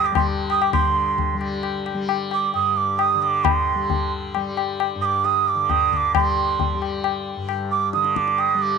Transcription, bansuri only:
0, 0, Header, 1, 2, 480
1, 0, Start_track
1, 0, Tempo, 451128
1, 770, Time_signature, 3, 2, 24, 8
1, 9345, End_track
2, 0, Start_track
2, 0, Title_t, "Bansuri"
2, 0, Program_c, 0, 73
2, 64, Note_on_c, 0, 86, 84
2, 168, Note_off_c, 0, 86, 0
2, 174, Note_on_c, 0, 84, 67
2, 283, Note_off_c, 0, 84, 0
2, 543, Note_on_c, 0, 87, 99
2, 666, Note_on_c, 0, 86, 89
2, 682, Note_off_c, 0, 87, 0
2, 773, Note_off_c, 0, 86, 0
2, 779, Note_on_c, 0, 84, 77
2, 1457, Note_off_c, 0, 84, 0
2, 2486, Note_on_c, 0, 86, 82
2, 2697, Note_off_c, 0, 86, 0
2, 2711, Note_on_c, 0, 87, 98
2, 2946, Note_on_c, 0, 86, 84
2, 2962, Note_off_c, 0, 87, 0
2, 3182, Note_on_c, 0, 87, 97
2, 3198, Note_off_c, 0, 86, 0
2, 3428, Note_on_c, 0, 86, 87
2, 3444, Note_off_c, 0, 87, 0
2, 3662, Note_on_c, 0, 84, 77
2, 3678, Note_off_c, 0, 86, 0
2, 4383, Note_off_c, 0, 84, 0
2, 5336, Note_on_c, 0, 87, 79
2, 5374, Note_on_c, 0, 86, 86
2, 5385, Note_off_c, 0, 87, 0
2, 5583, Note_on_c, 0, 87, 95
2, 5599, Note_off_c, 0, 86, 0
2, 5836, Note_on_c, 0, 86, 85
2, 5852, Note_off_c, 0, 87, 0
2, 6071, Note_on_c, 0, 87, 91
2, 6087, Note_off_c, 0, 86, 0
2, 6313, Note_off_c, 0, 87, 0
2, 6313, Note_on_c, 0, 87, 79
2, 6347, Note_on_c, 0, 86, 86
2, 6358, Note_off_c, 0, 87, 0
2, 6546, Note_off_c, 0, 86, 0
2, 6554, Note_on_c, 0, 84, 74
2, 7222, Note_off_c, 0, 84, 0
2, 8209, Note_on_c, 0, 86, 86
2, 8432, Note_off_c, 0, 86, 0
2, 8443, Note_on_c, 0, 87, 91
2, 8694, Note_on_c, 0, 86, 82
2, 8710, Note_off_c, 0, 87, 0
2, 8938, Note_on_c, 0, 87, 92
2, 8954, Note_off_c, 0, 86, 0
2, 9173, Note_on_c, 0, 86, 83
2, 9189, Note_off_c, 0, 87, 0
2, 9345, Note_off_c, 0, 86, 0
2, 9345, End_track
0, 0, End_of_file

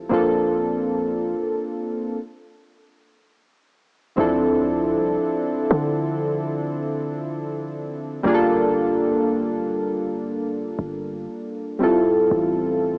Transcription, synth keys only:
0, 0, Header, 1, 2, 480
1, 0, Start_track
1, 0, Key_signature, -1, "minor"
1, 0, Tempo, 1016949
1, 52, Time_signature, 4, 2, 24, 8
1, 6127, End_track
2, 0, Start_track
2, 0, Title_t, "Synth keys"
2, 0, Program_c, 0, 88
2, 0, Control_c, 0, 64, 127
2, 44, Note_on_c, 0, 58, 72
2, 48, Note_on_c, 0, 60, 64
2, 54, Note_on_c, 0, 62, 61
2, 59, Control_c, 0, 64, 0
2, 59, Note_on_c, 0, 65, 63
2, 64, Note_on_c, 0, 69, 79
2, 151, Control_c, 0, 64, 127
2, 989, Note_off_c, 0, 58, 0
2, 991, Note_off_c, 0, 60, 0
2, 994, Note_off_c, 0, 62, 0
2, 997, Note_off_c, 0, 65, 0
2, 999, Note_off_c, 0, 69, 0
2, 1018, Control_c, 0, 64, 0
2, 1963, Note_on_c, 0, 52, 58
2, 1967, Note_on_c, 0, 60, 70
2, 1972, Note_on_c, 0, 62, 67
2, 1978, Note_on_c, 0, 64, 71
2, 1983, Note_on_c, 0, 69, 86
2, 1993, Note_on_c, 0, 53, 73
2, 1998, Note_off_c, 0, 52, 0
2, 2074, Control_c, 0, 64, 127
2, 3871, Note_off_c, 0, 60, 0
2, 3874, Note_off_c, 0, 62, 0
2, 3876, Note_off_c, 0, 64, 0
2, 3879, Note_off_c, 0, 69, 0
2, 3884, Note_off_c, 0, 53, 0
2, 3885, Note_on_c, 0, 55, 73
2, 3889, Note_on_c, 0, 58, 72
2, 3896, Note_on_c, 0, 62, 69
2, 3899, Control_c, 0, 64, 0
2, 3901, Note_on_c, 0, 65, 66
2, 3906, Note_on_c, 0, 68, 70
2, 3930, Note_off_c, 0, 68, 0
2, 3937, Note_on_c, 0, 69, 84
2, 3995, Control_c, 0, 64, 127
2, 5550, Note_off_c, 0, 55, 0
2, 5552, Note_off_c, 0, 58, 0
2, 5555, Note_off_c, 0, 62, 0
2, 5558, Note_off_c, 0, 65, 0
2, 5565, Note_on_c, 0, 55, 79
2, 5571, Note_on_c, 0, 60, 70
2, 5576, Note_off_c, 0, 69, 0
2, 5576, Note_on_c, 0, 64, 71
2, 5578, Control_c, 0, 64, 0
2, 5582, Note_on_c, 0, 65, 71
2, 5587, Note_on_c, 0, 69, 92
2, 5652, Control_c, 0, 64, 127
2, 6127, Note_off_c, 0, 55, 0
2, 6127, Note_off_c, 0, 60, 0
2, 6127, Note_off_c, 0, 64, 0
2, 6127, Note_off_c, 0, 65, 0
2, 6127, Note_off_c, 0, 69, 0
2, 6127, End_track
0, 0, End_of_file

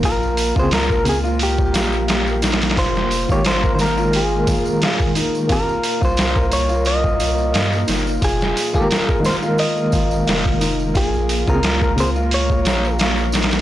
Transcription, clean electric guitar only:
0, 0, Header, 1, 2, 480
1, 0, Start_track
1, 0, Key_signature, -4, "minor"
1, 0, Tempo, 681818
1, 27, Time_signature, 4, 2, 24, 8
1, 9583, End_track
2, 0, Start_track
2, 0, Title_t, "Clean electric guitar"
2, 0, Program_c, 0, 27
2, 37, Note_on_c, 0, 70, 110
2, 376, Note_off_c, 0, 70, 0
2, 417, Note_on_c, 0, 72, 90
2, 511, Note_off_c, 0, 72, 0
2, 523, Note_on_c, 0, 70, 97
2, 739, Note_off_c, 0, 70, 0
2, 768, Note_on_c, 0, 68, 97
2, 830, Note_off_c, 0, 68, 0
2, 1008, Note_on_c, 0, 67, 91
2, 1690, Note_off_c, 0, 67, 0
2, 1962, Note_on_c, 0, 72, 118
2, 2333, Note_off_c, 0, 72, 0
2, 2336, Note_on_c, 0, 73, 92
2, 2440, Note_off_c, 0, 73, 0
2, 2443, Note_on_c, 0, 72, 103
2, 2617, Note_off_c, 0, 72, 0
2, 2637, Note_on_c, 0, 72, 73
2, 2675, Note_off_c, 0, 72, 0
2, 2686, Note_on_c, 0, 70, 95
2, 2901, Note_off_c, 0, 70, 0
2, 2928, Note_on_c, 0, 68, 90
2, 3610, Note_off_c, 0, 68, 0
2, 3888, Note_on_c, 0, 70, 88
2, 4255, Note_off_c, 0, 70, 0
2, 4257, Note_on_c, 0, 72, 83
2, 4595, Note_off_c, 0, 72, 0
2, 4598, Note_on_c, 0, 73, 102
2, 4834, Note_off_c, 0, 73, 0
2, 4837, Note_on_c, 0, 75, 100
2, 5524, Note_off_c, 0, 75, 0
2, 5805, Note_on_c, 0, 68, 94
2, 6160, Note_off_c, 0, 68, 0
2, 6163, Note_on_c, 0, 70, 83
2, 6486, Note_off_c, 0, 70, 0
2, 6519, Note_on_c, 0, 72, 93
2, 6582, Note_off_c, 0, 72, 0
2, 6756, Note_on_c, 0, 75, 103
2, 7204, Note_off_c, 0, 75, 0
2, 7722, Note_on_c, 0, 68, 93
2, 8093, Note_on_c, 0, 70, 83
2, 8095, Note_off_c, 0, 68, 0
2, 8446, Note_off_c, 0, 70, 0
2, 8450, Note_on_c, 0, 72, 103
2, 8512, Note_off_c, 0, 72, 0
2, 8689, Note_on_c, 0, 73, 96
2, 9130, Note_off_c, 0, 73, 0
2, 9583, End_track
0, 0, End_of_file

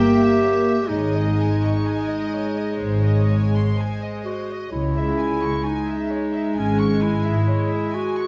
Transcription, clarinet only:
0, 0, Header, 1, 2, 480
1, 0, Start_track
1, 0, Key_signature, 4, "minor"
1, 0, Tempo, 930233
1, 459, Time_signature, 4, 2, 24, 8
1, 942, Tempo, 964630
1, 2382, Tempo, 921659
1, 4233, End_track
2, 0, Start_track
2, 0, Title_t, "Clarinet"
2, 0, Program_c, 0, 71
2, 0, Note_on_c, 0, 67, 86
2, 459, Note_on_c, 0, 63, 65
2, 466, Note_off_c, 0, 67, 0
2, 1902, Note_off_c, 0, 63, 0
2, 2147, Note_on_c, 0, 66, 47
2, 2366, Note_off_c, 0, 66, 0
2, 2381, Note_on_c, 0, 64, 68
2, 2867, Note_on_c, 0, 63, 58
2, 2875, Note_off_c, 0, 64, 0
2, 3351, Note_on_c, 0, 61, 59
2, 3359, Note_off_c, 0, 63, 0
2, 3580, Note_on_c, 0, 64, 64
2, 3588, Note_off_c, 0, 61, 0
2, 4065, Note_on_c, 0, 66, 67
2, 4072, Note_off_c, 0, 64, 0
2, 4233, Note_off_c, 0, 66, 0
2, 4233, End_track
0, 0, End_of_file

